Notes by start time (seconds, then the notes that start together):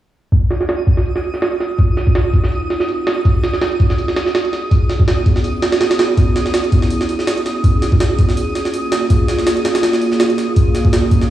0.32 C4 D#4 F4 G#4 D#6, kick, open hi-hat
0.51 snare, open hi-hat
0.61 snare
0.69 snare, open hi-hat
0.79 closed hi-hat
0.87 kick, open hi-hat
0.97 snare
1.06 open hi-hat
1.16 snare
1.24 open hi-hat
1.34 snare
1.42 snare, open hi-hat
1.52 closed hi-hat
1.60 snare, open hi-hat
1.79 kick, open hi-hat
1.97 snare, open hi-hat
2.07 kick
2.15 snare, open hi-hat
2.33 kick, open hi-hat
2.44 snare
2.52 open hi-hat
2.70 snare, open hi-hat
2.80 snare
2.88 open hi-hat
3.07 snare, open hi-hat
3.25 kick, open hi-hat
3.43 snare, open hi-hat
3.53 snare
3.61 snare, open hi-hat
3.72 closed hi-hat
3.80 kick, open hi-hat
3.90 snare
3.98 open hi-hat
4.08 snare
4.16 snare, open hi-hat
4.26 snare
4.35 snare, open hi-hat
4.45 closed hi-hat
4.53 snare, open hi-hat
4.71 B3 C#4 E4, kick, open hi-hat
4.90 snare, open hi-hat
5.00 kick
5.08 snare, open hi-hat
5.26 kick, open hi-hat
5.36 snare
5.44 open hi-hat
5.62 snare, open hi-hat
5.72 snare, open hi-hat
5.81 snare, open hi-hat
5.91 snare, open hi-hat
5.99 snare, open hi-hat
6.17 kick, open hi-hat
6.36 snare, open hi-hat
6.46 snare
6.54 snare, open hi-hat
6.64 closed hi-hat
6.72 kick, open hi-hat
6.82 snare
6.90 open hi-hat
7.01 snare
7.09 open hi-hat
7.19 snare
7.27 snare, open hi-hat
7.38 closed hi-hat
7.46 snare, open hi-hat
7.64 kick, open hi-hat
7.82 snare, open hi-hat
7.92 kick
8.00 snare, open hi-hat
8.19 kick, open hi-hat
8.29 snare
8.37 A#3 F4, open hi-hat
8.55 snare, open hi-hat
8.65 snare
8.74 open hi-hat
8.92 snare, open hi-hat
9.10 kick, open hi-hat
9.28 snare, open hi-hat
9.38 snare
9.47 snare, open hi-hat
9.57 closed hi-hat
9.65 snare, open hi-hat
9.75 snare, open hi-hat
9.83 snare, open hi-hat
9.93 snare
10.02 open hi-hat
10.12 snare
10.20 snare, open hi-hat
10.30 closed hi-hat
10.38 snare, open hi-hat
10.56 kick, open hi-hat
10.75 snare, open hi-hat
10.85 kick
10.93 snare, open hi-hat
11.11 kick, open hi-hat
11.21 snare